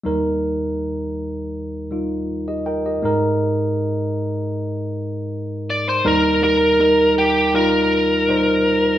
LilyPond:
<<
  \new Staff \with { instrumentName = "Lead electric guitar" } { \time 4/4 \key ees \major \tempo 4 = 80 r1 | r2. r8 d''16 c''16 | bes'8 bes'4 g'8 bes'2 | }
  \new Staff \with { instrumentName = "Tine electric piano" } { \time 4/4 \key ees \major << { r2. r16 <g' ees''>16 <bes' g''>16 <g' ees''>16~ | <g' ees''>16 r2. r8. | r1 | } \\ { <g ees' bes'>2~ <g ees' bes'>8 <g ees' f'>4. | <aes ees' bes'>1 | <g ees' bes'>8 <g ees' g'>8 <g ees' bes'>4 <g ees' f'>4 <g ees' c''>4 | } >> }
  \new Staff \with { instrumentName = "Tine electric piano" } { \clef bass \time 4/4 \key ees \major <ees, ees>1 | aes,1 | <ees, ees>1 | }
>>